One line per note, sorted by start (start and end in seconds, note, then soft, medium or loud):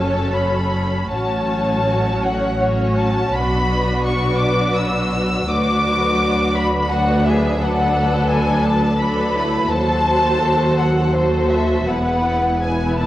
0.00 1.07 F#1 soft
0.00 1.07 F#2 soft
0.00 1.07 F#3 soft
0.00 1.07 C#4 soft
0.00 1.07 A4 soft
0.00 1.08 C#5 soft
0.00 0.35 A5 medium
0.35 1.12 B5 soft
1.10 3.33 A1 soft
1.10 3.33 A2 soft
1.10 2.56 F#3 soft
1.10 2.56 C#4 soft
1.10 2.57 F#4 soft
1.10 2.57 C#5 soft
1.10 2.21 A5 medium
2.24 2.60 F#5 medium
2.59 3.32 F#3 soft
2.59 3.32 C#4 soft
2.59 3.32 F#4 soft
2.59 3.32 C#5 soft
2.59 2.97 C#5 medium
2.97 3.34 A5 medium
3.33 5.45 B1 soft
3.33 5.45 B2 soft
3.33 5.45 F#3 soft
3.33 5.49 D4 soft
3.33 5.46 F#4 soft
3.33 5.49 B4 soft
3.33 4.04 B5 medium
4.05 4.39 C#6 medium
4.38 4.75 D6 medium
4.76 5.49 E6 medium
5.49 9.71 D2 soft
5.49 9.71 D2 medium
5.49 6.88 F#3 soft
5.49 6.88 D4 soft
5.49 6.89 F#4 medium
5.49 6.88 B4 medium
5.49 6.56 D6 medium
6.56 6.91 B5 medium
6.90 7.61 F#3 medium
6.90 7.60 D4 medium
6.90 7.26 F#4 medium
6.90 7.60 B4 medium
6.90 7.26 F#5 medium
7.25 7.62 G#4 soft
7.25 7.61 E5 medium
7.61 8.97 F#3 soft
7.61 8.97 D4 soft
7.61 9.00 A4 medium
7.61 8.98 B4 medium
7.61 8.30 F#5 medium
8.30 8.64 G#5 medium
8.65 9.00 A5 medium
8.99 9.69 F#3 medium
8.99 9.35 D4 medium
8.99 9.70 A4 soft
8.99 9.70 B4 soft
8.99 9.70 B5 medium
9.35 9.70 E4 soft
9.70 11.84 D#2 soft
9.70 11.85 D#2 medium
9.70 11.13 F#3 soft
9.70 11.14 F#4 soft
9.70 11.14 A4 medium
9.70 11.16 C5 medium
9.70 10.80 A5 medium
10.78 11.15 F#5 medium
11.14 11.87 F#3 medium
11.14 11.87 F#4 medium
11.14 11.87 A4 soft
11.14 11.51 C5 medium
11.14 11.87 C5 soft
11.50 11.87 E5 medium
11.87 13.06 E1 medium
11.87 13.06 E2 soft
11.87 12.60 B3 soft
11.87 12.61 E4 soft
11.87 12.61 B4 soft
11.87 12.62 F#5 medium
12.60 13.06 B3 soft
12.60 13.06 E4 soft
12.60 13.06 B4 soft
12.60 12.98 G#5 medium
12.98 13.06 A5 soft